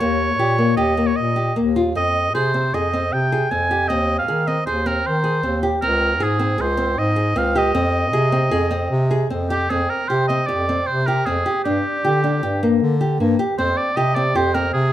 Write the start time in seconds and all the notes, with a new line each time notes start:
0.00 D#2 A#3 C#5
0.39 A#2 G4
0.58 A#3
0.76 D#2 G4 D#5
0.97 A#3
1.07 C#5
1.16 A#2 D#5
1.36 G4
1.56 D#2 A#3
1.76 F4
1.95 F2 C4 D#5
2.35 C3 G#4 C5
2.54 C4
2.74 F2 G#4 D#5
2.93 C4
3.12 C3 G5
3.32 G#4
3.51 F2 C4 G#5
3.71 G4
3.88 D#2 C4 D#5
4.18 F5
4.28 D#3 G#4
4.47 C4 D#5
4.66 D#2 G#4 C5
4.86 C4 A#4
5.06 D#3 C5
5.24 G#4
5.43 D#2 C4
5.63 G4
5.82 C#2 C4 A#4
6.20 G#2 G#4
6.39 C4
6.58 C#2 G#4 C5
6.77 C4
6.97 G#2 D#5
7.16 G#4
7.36 C#2 C4 F5
7.55 G4 D#5
7.75 F2 C4
8.13 C3 G#4
8.32 C4
8.51 F2 G#4
8.71 C4
8.91 C3
9.11 G#4
9.30 F2 C4
9.50 G4
9.70 F2 C4 G#4
9.89 A#4
10.08 C3 G4 C5
10.28 C4 D#5
10.47 F2 G4 D5
10.69 C4
10.86 C3 C5
11.06 G4 A#4
11.25 F2 C4 G#4
11.46 G4
11.64 G2 D4 G4
12.05 D3 G4
12.24 D4
12.43 G2 G4
12.63 A#3
12.82 D3
13.01 G4
13.20 G2 A#3
13.39 G4
13.58 F2 C4 C5
13.77 D5
13.97 C3 G4 D#5
14.15 C4 D5
14.35 F2 G4 C5
14.54 C4 A#4
14.73 C3 G#4